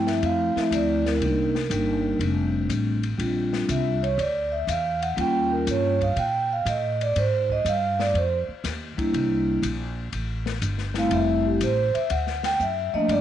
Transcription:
Already playing: G2 F3 A3 C4 E4
0.07 E5, snare, ride
0.22 F2 F5, ride
0.55 F3 A3 C4 E4 E5, muted upright bass stroke, snare
0.71 D2 D5, hi-hat pedal, ride
1.06 A#4, snare, ride
1.20 C2 G3 A#3 D4 D#4, ride
1.55 snare
1.70 G1 G3 A#3 D4 D#4, hi-hat pedal, ride
2.19 F1 G3 A3 C4 D4, ride
2.69 A1, hi-hat pedal, ride
3.03 ride
3.18 A#1 G3 C4 D4 F4, ride
3.53 snare
3.68 C2 E5, hi-hat pedal, ride
4.03 C#5, ride
4.18 D2 D5, ride
4.52 E5
4.67 E2 F5, hi-hat pedal, ride
5.02 F#5, ride
5.16 D#2 G3 A#3 C#4 F4, ride
5.20 G5
5.52 A#4
5.67 G2 C#5, hi-hat pedal, ride
6.01 F5, kick, ride
6.16 A#2 G5, ride
6.53 F5
6.65 A2 D#5, hi-hat pedal, ride
7.01 D5, ride
7.16 G#2 C5, ride
7.50 D#5, kick
7.65 G2 F5, hi-hat pedal, ride
8.00 D5, snare
8.14 F2 C5, ride
8.48 muted upright bass stroke
8.64 D#2, snare, hi-hat pedal, ride
8.97 G3 A#3 D4 E4, muted upright bass stroke, kick, ride
9.13 C2, ride
9.62 A#1, hi-hat pedal, ride
10.13 A1, ride
10.46 snare
10.62 G1, hi-hat pedal, ride
10.78 snare
10.94 G3 A3 C4 E4, snare, ride
10.98 F5
11.11 F1 E5, ride
11.46 G4
11.61 A1 C5, hi-hat pedal, ride
11.94 E5, muted upright bass stroke, ride
12.10 D2 F#5, ride
12.27 snare
12.43 G5, snare, ride
12.60 F#2 E5, hi-hat pedal
12.93 F3 A3 A#3 D4 D#5, muted upright bass stroke
13.08 G2 D5, ride

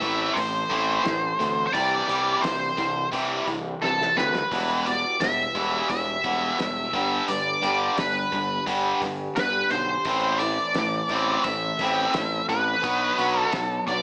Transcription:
Already playing: E5
0.00 A1 A2 E3 A3 A4, kick, open hi-hat
0.04 C4 E4
0.33 A1 A2 E3 C4 C5, kick, open hi-hat
0.38 E4 A4
0.70 A1 A2 E3 A3 E4 A4, kick, open hi-hat
0.74 C4
1.04 A1 A2 E3 C4 E4 A4, snare, open hi-hat
1.39 D2 A2 E3 C4 E4 A4, open hi-hat
1.67 C5
1.73 C2 C3 E3 G3 E4 G4 D5, kick, open hi-hat
2.07 C2 C3 E3 G3 E4 G4, open hi-hat
2.42 C2 C3 E3 G3 E4 G4 C5, snare, open hi-hat
2.77 C2 C3 E3 G3 E4 G4, kick, open hi-hat
3.10 C2 C3 E3 G3 E4 G4, kick, open hi-hat
3.45 C2 C3 E3 G3 E4 G4, kick, open hi-hat
3.81 C2 C3 E3 G3 E4 G4 A4, snare
4.01 snare
4.16 D2 C3 E3 G3 E4 G4 B4, snare
4.36 snare
4.50 E1 E2 B2 E3 G3 E4 G4, kick, open hi-hat
4.85 E2 B2 E3 G3 E4 G4 D5, open hi-hat
5.20 E1 E2 B2 E3 G3 E4 G4 E5, snare, open hi-hat
5.53 E1 E2 B2 E3 G3 E4 G4, kick, open hi-hat
5.89 E1 E2 B2 E3 G3 E4 G4 E5, kick, open hi-hat
6.23 E1 E2 B2 E3 G3 E4 G4, kick, open hi-hat
6.58 E1 E2 B2 E3 G3 E4 G4, snare, open hi-hat
6.93 G1 G2 D3 G3 B3 D4 G4, kick, open hi-hat
7.28 G1 G2 D3 G3 B3 D4 G4 D5, open hi-hat
7.62 G1 G2 D3 G3 B3 D4 G4, open hi-hat
7.66 G3
7.97 G1 G2 D3 G3 B3 D4 G4 B4, snare, open hi-hat
8.31 G1 G2 D3 G3 B3 D4 G4, kick, open hi-hat
8.65 G1 G2 D3 G3 B3 D4 G4, kick, open hi-hat
9.00 G1 G2 D3 G3 B3 D4 G4, kick, snare, open hi-hat
9.35 G1 G2 D3 G3 B3 D4 G4 B4, snare, open hi-hat
9.70 B1 G2 D3 G3 D4 C5, open hi-hat
10.04 A1 A2 E3 C4 E4 A4, kick, open hi-hat
10.39 A2 E3 C4 E4 A4 D5, open hi-hat
10.73 A1 A2 E3 C4 E4 A4, snare, open hi-hat
11.08 A1 A2 E3 C4 E4 A4, kick, open hi-hat
11.44 A1 A2 E3 C4 E4 A4 E5, kick, open hi-hat
11.78 A1 A2 E3 C4 E4 A4, kick, open hi-hat
12.14 A1 A2 E3 C4 E4 A4, snare, open hi-hat
12.47 A1 A2 E3 C4 E4 A4 B4, open hi-hat
12.82 B1 B2 F#3 B3 D4 F#4, kick, open hi-hat
13.18 B1 B2 F#3 B3 D4 F#4, open hi-hat
13.40 A4
13.51 B1 B2 F#3 B3 D4 F#4, snare, open hi-hat
13.87 B1 B2 F#3 B3 D4 F#4 D5, kick, open hi-hat

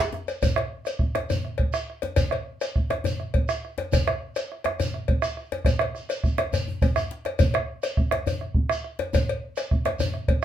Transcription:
0.00 bombo rim
0.13 bombo rim, djembe slap, djembe tone
0.28 cowbell, djembe slap, shekere
0.42 bombo low, cowbell, djembe bass, shekere
0.56 bombo rim, cowbell
0.85 bombo rim, cowbell, shekere
0.99 bombo rim, bombo low
1.15 bombo rim, cowbell, djembe slap, djembe tone
1.30 cowbell, djembe bass, shekere
1.44 bombo rim
1.58 bombo low, cowbell
1.73 bombo rim, shekere
1.90 bombo rim
2.02 cowbell, djembe slap, djembe tone
2.16 bombo low, cowbell, djembe bass, shekere
2.31 bombo rim, cowbell
2.61 bombo rim, cowbell, shekere
2.76 bombo rim, bombo low
2.90 bombo rim, cowbell, djembe slap, djembe tone
3.04 cowbell, djembe bass, shekere
3.20 bombo rim
3.34 bombo low, cowbell
3.49 bombo rim, shekere
3.65 bombo rim
3.78 cowbell, djembe slap, djembe tone
3.92 bombo low, cowbell, djembe bass, shekere
4.07 bombo rim, cowbell
4.36 bombo rim, cowbell, shekere
4.52 bombo rim
4.64 bombo rim, cowbell, djembe slap, djembe tone
4.80 cowbell, djembe bass, shekere
4.94 bombo rim
5.08 bombo low, cowbell
5.22 bombo rim, shekere
5.37 bombo rim
5.52 cowbell, djembe slap, djembe tone
5.65 bombo rim, bombo low, cowbell, djembe slap, djembe bass, shekere
5.79 bombo rim, cowbell, djembe slap
5.95 bombo rim, shekere
6.09 bombo rim, cowbell, shekere
6.24 bombo rim, bombo low, shekere
6.38 bombo rim, cowbell, djembe slap, djembe tone
6.53 cowbell, djembe slap, djembe bass, shekere
6.68 djembe bass
6.82 bombo low, cowbell, djembe bass, shekere
6.96 bombo rim, djembe bass, shekere
7.11 djembe slap
7.25 bombo rim, cowbell, djembe slap
7.39 bombo low, cowbell, djembe bass, shekere
7.54 bombo rim, cowbell
7.83 bombo rim, cowbell, shekere
7.97 bombo rim, bombo low
8.11 bombo rim, cowbell, djembe slap, djembe tone
8.27 cowbell, djembe bass, shekere
8.41 bombo rim
8.54 bombo low
8.69 bombo rim, shekere
8.84 bombo rim
8.99 cowbell, djembe slap, djembe tone
9.13 bombo low, cowbell, djembe bass, shekere
9.29 cowbell
9.57 bombo rim, cowbell, shekere
9.71 bombo rim, bombo low
9.85 bombo rim, cowbell, djembe slap, djembe tone
9.99 cowbell, djembe bass, shekere
10.14 bombo rim
10.28 bombo low, cowbell

